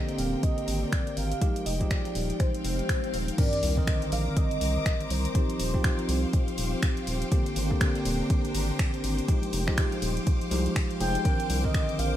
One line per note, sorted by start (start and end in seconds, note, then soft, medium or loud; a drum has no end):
0.00 1.39 D3 medium
0.00 1.39 A#3 medium
0.00 1.38 C4 medium
0.00 1.39 C4 medium
0.00 1.42 C4 medium
0.00 1.40 G4 medium
0.00 3.34 G4 medium
0.00 2.07 A#4 medium
0.00 2.07 C5 medium
0.00 0.20 D#5 loud
0.00 0.24 F5 medium
0.00 4.18 G5 medium
0.09 closed hi-hat soft
0.18 0.35 D#1 loud
0.18 0.43 F5 loud
0.18 open hi-hat medium
0.43 0.84 D#5 loud
0.43 kick loud
0.43 closed hi-hat medium
0.58 closed hi-hat soft
0.68 0.85 G#1 medium
0.68 open hi-hat loud
0.82 1.18 D5 loud
0.92 finger snap loud
0.92 kick loud
0.92 closed hi-hat medium
1.07 closed hi-hat soft
1.17 1.34 G#1 medium
1.17 1.65 F5 loud
1.17 open hi-hat medium
1.32 closed hi-hat medium
1.41 7.32 D#3 medium
1.41 1.77 F3 medium
1.41 1.77 G#3 medium
1.41 3.36 G#3 medium
1.41 3.36 D#4 medium
1.41 1.77 D#4 medium
1.41 1.77 G4 medium
1.41 kick loud
1.41 closed hi-hat medium
1.56 closed hi-hat medium
1.66 1.83 F1 loud
1.66 1.92 D#5 medium
1.66 open hi-hat loud
1.74 3.38 G#3 medium
1.80 3.35 F3 medium
1.80 3.36 G#3 medium
1.80 3.36 D#4 medium
1.80 3.36 G4 medium
1.80 kick medium
1.80 closed hi-hat soft
1.90 2.41 D5 loud
1.90 4.09 F5 medium
1.90 finger snap loud
1.90 kick loud
1.90 closed hi-hat medium
2.05 closed hi-hat soft
2.15 2.32 D#1 loud
2.15 open hi-hat medium
2.30 closed hi-hat soft
2.40 2.64 C5 loud
2.40 finger snap soft
2.40 kick loud
2.40 closed hi-hat medium
2.40 swell medium
2.54 closed hi-hat soft
2.64 2.81 F1 loud
2.64 3.10 C5 medium
2.64 open hi-hat medium
2.79 closed hi-hat soft
2.89 finger snap loud
2.89 kick loud
2.89 closed hi-hat medium
3.04 closed hi-hat soft
3.14 3.30 D#1 medium
3.14 open hi-hat medium
3.28 closed hi-hat medium
3.38 3.74 D#3 medium
3.38 5.33 G3 medium
3.38 3.74 C4 medium
3.38 5.33 C4 medium
3.38 3.74 D4 medium
3.38 5.33 A#4 medium
3.38 3.74 A#4 medium
3.38 12.17 C5 medium
3.38 3.79 D5 loud
3.38 12.17 D6 medium
3.38 kick loud
3.38 closed hi-hat medium
3.38 crash loud
3.38 sub drop medium
3.53 closed hi-hat medium
3.63 3.80 C2 loud
3.63 open hi-hat loud
3.74 5.33 D3 medium
3.74 5.32 D#3 medium
3.74 5.32 C4 medium
3.74 10.08 C5 medium
3.74 4.14 D#5 loud
3.74 kick medium
3.78 5.33 A#4 medium
3.87 6.14 D6 medium
3.87 finger snap loud
3.87 kick loud
3.87 closed hi-hat medium
4.02 closed hi-hat soft
4.12 4.29 A#1 loud
4.12 4.38 F5 loud
4.12 6.01 A#5 medium
4.12 open hi-hat medium
4.37 5.12 D#5 loud
4.37 kick loud
4.37 closed hi-hat medium
4.51 closed hi-hat soft
4.61 4.78 C2 medium
4.61 open hi-hat loud
4.86 finger snap loud
4.86 kick loud
4.86 closed hi-hat medium
5.00 closed hi-hat soft
5.10 5.27 C2 medium
5.10 6.58 C5 loud
5.10 open hi-hat medium
5.25 closed hi-hat medium
5.34 5.70 F3 medium
5.34 5.71 C4 medium
5.34 9.24 C4 medium
5.34 5.71 D#4 medium
5.34 7.30 F4 medium
5.34 11.21 G4 medium
5.34 5.71 G4 medium
5.34 kick loud
5.34 closed hi-hat medium
5.50 closed hi-hat medium
5.60 5.76 D#1 loud
5.60 open hi-hat loud
5.73 7.29 F3 medium
5.73 7.29 C4 medium
5.73 7.29 D#4 medium
5.73 7.30 G4 medium
5.73 8.11 F5 medium
5.73 kick medium
5.81 11.98 G5 medium
5.81 finger snap loud
5.81 kick loud
5.81 closed hi-hat medium
5.99 closed hi-hat soft
6.09 6.26 C2 loud
6.09 open hi-hat medium
6.33 kick loud
6.33 closed hi-hat medium
6.48 closed hi-hat soft
6.58 6.75 D#1 medium
6.58 open hi-hat loud
6.82 finger snap loud
6.82 kick loud
6.82 closed hi-hat medium
6.97 closed hi-hat soft
7.07 7.24 D#1 medium
7.07 open hi-hat medium
7.22 closed hi-hat medium
7.31 7.67 D3 medium
7.31 7.67 A#3 medium
7.31 9.26 A#3 medium
7.31 7.67 C4 medium
7.31 9.28 D4 medium
7.31 9.26 D4 medium
7.31 7.68 G4 medium
7.31 kick loud
7.31 closed hi-hat medium
7.39 9.91 A#4 medium
7.46 closed hi-hat soft
7.56 7.73 G#1 loud
7.56 open hi-hat loud
7.70 9.26 D3 medium
7.70 9.26 A#3 medium
7.70 9.26 C4 medium
7.70 9.26 G4 loud
7.70 kick medium
7.81 finger snap loud
7.81 kick loud
7.81 closed hi-hat medium
7.95 closed hi-hat soft
8.05 8.22 D#1 loud
8.05 open hi-hat loud
8.30 kick loud
8.30 closed hi-hat medium
8.45 closed hi-hat soft
8.55 8.71 G#1 medium
8.55 open hi-hat loud
8.79 finger snap loud
8.79 kick loud
8.79 closed hi-hat medium
8.94 closed hi-hat soft
9.04 9.21 G#1 medium
9.04 open hi-hat loud
9.19 closed hi-hat medium
9.28 9.64 F3 medium
9.28 12.17 F3 medium
9.28 9.64 G#3 medium
9.28 11.23 G#3 medium
9.28 9.64 D#4 medium
9.28 9.64 G4 medium
9.28 kick loud
9.28 closed hi-hat medium
9.36 11.25 G#3 medium
9.43 closed hi-hat medium
9.53 9.70 F1 loud
9.53 open hi-hat loud
9.67 10.49 F3 medium
9.67 10.49 G#3 medium
9.67 10.49 D#4 medium
9.67 10.50 G4 medium
9.67 12.05 F5 medium
9.67 finger snap medium
9.67 kick medium
9.78 finger snap loud
9.78 kick loud
9.78 closed hi-hat medium
9.92 closed hi-hat soft
10.02 10.19 D#1 loud
10.02 open hi-hat loud
10.17 closed hi-hat soft
10.27 kick loud
10.27 closed hi-hat medium
10.41 closed hi-hat soft
10.51 10.68 C2 medium
10.51 10.98 F3 medium
10.51 10.98 G#3 medium
10.51 10.98 D#4 medium
10.51 10.98 G4 medium
10.51 open hi-hat loud
10.66 closed hi-hat soft
10.76 finger snap loud
10.76 kick loud
10.76 closed hi-hat medium
10.91 closed hi-hat soft
11.00 11.17 F1 loud
11.00 11.22 F3 medium
11.00 11.23 G#3 medium
11.00 11.23 D#4 medium
11.00 11.23 G#4 medium
11.00 11.60 G5 loud
11.00 open hi-hat medium
11.15 closed hi-hat medium
11.25 11.61 D#3 medium
11.25 11.61 C4 medium
11.25 12.17 C4 medium
11.25 11.61 D4 medium
11.25 12.17 A#4 medium
11.25 11.61 A#4 medium
11.25 kick loud
11.25 closed hi-hat medium
11.40 12.17 C5 medium
11.40 closed hi-hat soft
11.50 11.66 C2 loud
11.50 open hi-hat loud
11.54 12.17 D6 medium
11.63 12.17 D3 medium
11.63 12.17 D#3 medium
11.63 12.17 C4 medium
11.63 12.17 A#4 loud
11.63 12.00 D#5 loud
11.63 kick medium
11.74 finger snap loud
11.74 kick loud
11.74 closed hi-hat medium
11.89 closed hi-hat soft
11.99 12.16 A#1 loud
11.99 12.17 F5 loud
11.99 open hi-hat medium
12.12 12.17 A#5 medium